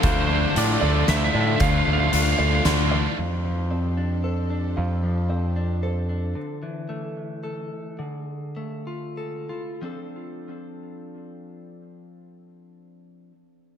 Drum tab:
HH |x-x-x-|x-x-x-|------|------|
SD |----o-|----o-|------|------|
BD |o-----|o-----|------|------|

HH |------|------|------|------|
SD |------|------|------|------|
BD |------|------|------|------|